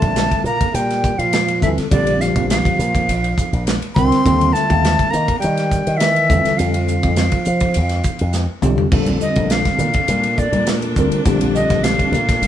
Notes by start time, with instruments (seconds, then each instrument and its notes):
Already playing: tine electric piano D3 G3 C4 F4 A4, trombone A3, flute A5
0.02 slap bass A#1, kick, ride
0.16 snare, hi-hat pedal, ride
0.31 kick, ride
0.44 slap bass A#2, trombone A#3, flute A#5, hi-hat pedal
0.61 muted slap bass stroke, kick, ride
0.74 slap bass A#2, trombone G3, flute G5, hi-hat pedal, ride
0.90 snare, ride
1.04 kick, hi-hat pedal
1.19 slap bass A#2, trombone F3, flute F5, ride
1.33 snare, hi-hat pedal, ride
1.48 ride
1.62 slap bass D2, tine electric piano D3 G3 C4 F4 A4, trombone E3, flute E5, kick, hi-hat pedal
1.78 muted slap bass stroke, snare, ride
1.91 slap bass A#1, tine electric piano D3 G3 C4 F4 G4, trombone D3, flute D5, kick, hi-hat pedal, ride
2.07 ride
2.21 trombone F3, flute F5, snare, hi-hat pedal
2.36 slap bass A#1, kick, ride
2.50 trombone F3, flute F5, snare, hi-hat pedal, ride
2.65 kick, ride
2.79 slap bass A#2, hi-hat pedal
2.95 kick, ride
3.08 slap bass A#1, hi-hat pedal, ride
3.24 ride
3.38 kick, hi-hat pedal
3.52 slap bass A#1, ride
3.67 snare, hi-hat pedal, ride
3.82 ride
3.95 slap bass C2, tine electric piano D3 G3 C4 F4 A#4, trombone C4, flute C6, kick, hi-hat pedal
4.12 snare, ride
4.25 slap bass D#2, tine electric piano D3 G3 C4 F4 A4, kick, hi-hat pedal, ride
4.41 ride
4.53 trombone A3, flute A5, snare, hi-hat pedal
4.70 slap bass D#2, kick, ride
4.85 snare, hi-hat pedal, ride
4.99 kick, ride
5.10 slap bass D#3, trombone A#3, flute A#5, hi-hat pedal
5.28 muted slap bass stroke, kick, ride
5.40 trombone G3, flute G5, hi-hat pedal, ride
5.44 slap bass D#3
5.57 snare, ride
5.71 kick, hi-hat pedal
5.87 slap bass D#3, ride
5.97 trombone E3, flute E5, hi-hat pedal, ride
6.01 snare
6.16 ride
6.30 slap bass F2, tine electric piano D3 G3 C4 F4 A4, kick, hi-hat pedal
6.45 muted slap bass stroke, snare, ride
6.56 slap bass F2, trombone F3, flute F5, hi-hat pedal, ride
6.74 ride
6.88 hi-hat pedal
7.03 slap bass F2, kick, ride
7.16 snare, hi-hat pedal, ride
7.32 kick, ride
7.45 slap bass F3, hi-hat pedal
7.60 kick, ride
7.74 slap bass F2, hi-hat pedal, ride
7.89 snare, ride
8.04 kick, hi-hat pedal
8.19 slap bass F2, ride
8.33 snare, hi-hat pedal
8.62 slap bass B1, tine electric piano D3 G3 C4 F4 G4, hi-hat pedal, mid tom
8.78 floor tom
8.92 slap bass A#1, string section C3 A3 D4, tine electric piano D3 G3 C4 F4 A4, kick, crash
9.06 ride, high conga
9.21 flute D#5, hi-hat pedal
9.36 slap bass A#1, kick, ride
9.50 flute F5, snare, hi-hat pedal, ride
9.65 kick, snare, ride
9.78 slap bass A#2, hi-hat pedal, low conga
9.94 muted slap bass stroke, kick, ride
10.08 slap bass A#2, hi-hat pedal, ride, high conga
10.23 ride
10.37 flute D5, kick, hi-hat pedal
10.52 slap bass A#2, ride, high conga
10.67 snare, hi-hat pedal, ride
10.82 ride
10.96 slap bass D2, tine electric piano D3 G3 C4 F4 A#4, kick, hi-hat pedal
11.11 muted slap bass stroke, ride
11.25 slap bass A#1, tine electric piano D3 G3 C4 F4 G4, kick, hi-hat pedal, ride
11.41 ride, high conga
11.55 flute D#5, hi-hat pedal
11.70 slap bass A#1, kick, snare, ride
11.84 flute F5, snare, hi-hat pedal, ride
11.99 kick, ride
12.12 slap bass A#2, hi-hat pedal, low conga
12.29 kick, snare, ride
12.42 slap bass A#1, hi-hat pedal, ride, high conga